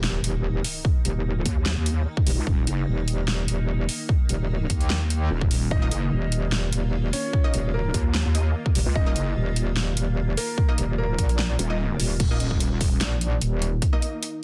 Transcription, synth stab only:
5.82 A#3 D#4 D#5
7.44 A#3 D#4 D#5
8.35 A#3 D#4 D#5
9.06 A#3 D#4 D#5
10.68 A#3 D#4 D#5
11.70 A#3 D#4 D#5
12.31 A#3 D#4 D#5
13.93 A#3 D#4 D#5

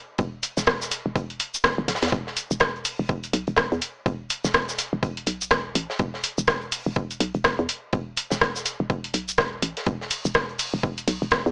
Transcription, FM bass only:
0.19 E1
0.57 E1
1.06 E1
1.78 G1
1.88 D1
2.03 E2
2.12 E1
2.51 E1
2.99 E1
3.33 B1
3.48 E1
3.72 E2
4.06 E1
4.45 E1
4.93 E1
5.27 B1
5.75 A1
6.00 E1
6.38 E1
6.86 E1
7.20 B1
7.35 E1
7.59 E2
7.93 E1
8.32 E1
8.80 E1
9.14 B1
9.62 A1
9.87 E1
10.25 E1
10.74 E1
11.08 B1
11.22 E1
11.46 E2

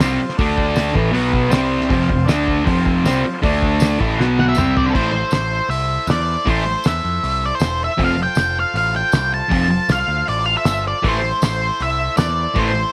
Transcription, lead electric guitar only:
4.40 F#5
4.49 E5
4.77 D5
4.86 A4
4.94 C5
5.33 C5
5.70 E5
6.11 D5
6.50 C5
6.87 E5
7.46 D5
7.55 C5
7.84 E5
8.04 F5
8.23 G5
8.60 F5
8.77 F5
8.96 G5
9.34 A5
9.71 A5
9.92 F5
10.29 D5
10.46 F5
10.57 E5
10.88 D5
11.09 C5
11.45 C5
11.82 E5
12.17 D5
12.59 C5

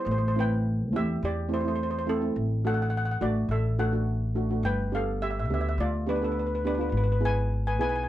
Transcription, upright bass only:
0.06 A1
0.93 E2
1.23 E2
2.36 A1
3.21 A1
3.49 A1
4.63 G1
5.50 D2
5.78 D2
6.92 G#1
7.80 B1

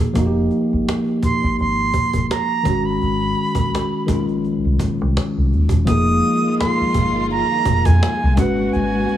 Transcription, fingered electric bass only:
0.16 F1
0.73 G#1
1.23 muted fingered electric bass stroke
1.43 G#1
1.60 G#1
2.15 G1
2.66 G#1
3.03 G#1
3.56 A#1
4.09 A#1
4.65 C2
4.80 A#1
5.01 C2
5.37 C2
5.54 D#1
5.70 E1
5.88 F1
6.81 muted fingered electric bass stroke
6.96 G1
7.67 F1
7.86 F2
8.23 C2
8.38 G#1
8.75 G#1

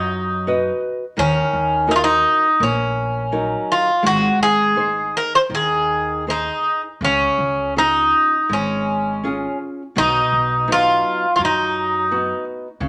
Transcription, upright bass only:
Already playing: F#2
1.18 D#2
1.53 D#2
2.60 A#1
4.04 G#1
4.39 G#1
5.49 D#2
7.01 C#2
7.38 C#2
8.50 G#1
9.97 B1
10.32 B1
11.39 F#2
12.80 C#2

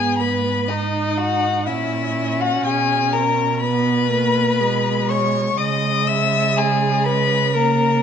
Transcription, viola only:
Already playing: B3
0.69 D#4
1.67 C#4
3.63 B3
4.11 A#3
4.60 G#3
5.58 G#3
7.56 A#3

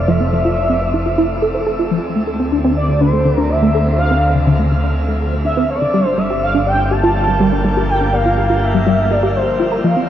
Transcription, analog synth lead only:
0.08 E5
2.77 D5
3.01 C5
3.38 A#4
3.50 E5
3.99 F5
5.45 E5
5.70 D5
6.07 C5
6.18 E5
6.43 F5
6.67 G5
6.91 A5
7.89 G5
8.14 F5
8.62 E5
9.11 D5
9.35 C5
9.84 F5

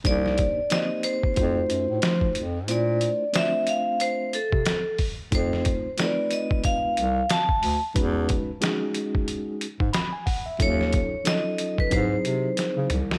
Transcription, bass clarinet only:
0.05 C2
1.37 F2
1.69 F#2
1.89 A2
2.03 F3
2.36 F2
2.68 A#2
4.52 C3
5.32 F2
6.97 C2
7.62 D2
7.96 E2
9.80 G#2
10.60 D#2
11.92 G#2
12.24 C3
12.77 C#3
12.91 C2

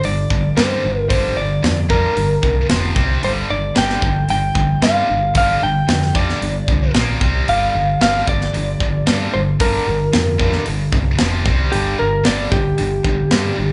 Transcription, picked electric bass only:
0.04 G1
0.31 G1
0.59 G2
0.85 G1
1.10 G1
1.37 G1
1.64 F2
2.17 G1
2.43 C2
2.71 F1
2.96 C2
3.24 G1
3.51 G1
3.77 G1
4.03 G1
4.29 G1
4.56 G1
4.83 G2
5.09 G1
5.35 G1
5.63 G1
5.89 F2
6.41 G1
6.68 C2
6.94 A#1
7.22 C2
7.49 G1
7.75 G1
8.01 G1
8.28 G1
8.55 G1
8.81 G1
9.08 G2
9.35 G1
9.61 G1
9.88 G1
10.15 F2
10.68 G1
10.93 C2
11.21 F1
11.46 C2
11.74 G1
12.00 G1
12.27 G1
12.52 G1
12.79 G1
13.05 G1
13.32 G2
13.58 G1

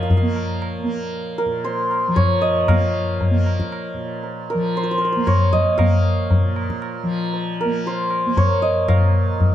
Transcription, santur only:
Already playing: A#4 C#5 D#5
0.03 F5
0.10 F5
0.17 F5
1.38 A#4
1.64 C5
2.16 C#5
2.41 D#5
2.69 F5
4.50 A#4
4.77 C5
4.84 C5
4.91 C5
4.98 C5
5.05 C5
5.12 C5
5.27 C#5
5.53 D#5
5.78 F5
7.61 A#4
7.87 C5
8.37 C#5
8.62 D#5
8.88 F5

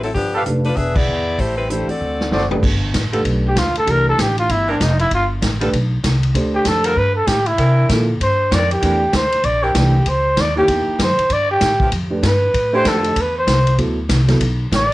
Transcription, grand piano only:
0.46 A3 D4 G4 B4
1.70 E3 A3 D4 G4
2.51 A3 D4 G4 B4
3.12 A3 D4 G4 B4
3.86 E3 A3 D4 G4
5.61 A3 D4 G4 B4
6.35 A3 D4 G4 C5
7.90 F3 A#3 E4 A4
8.82 E3 A3 D4 G4
9.75 E3 A3 D4 G4
10.55 A#3 D#4 E4 G4
12.10 A3 D4 G4 B4
12.73 A3 D4 G4 C5
13.78 F#3 B3 E4 A4
14.28 F#3 B3 E4 A4

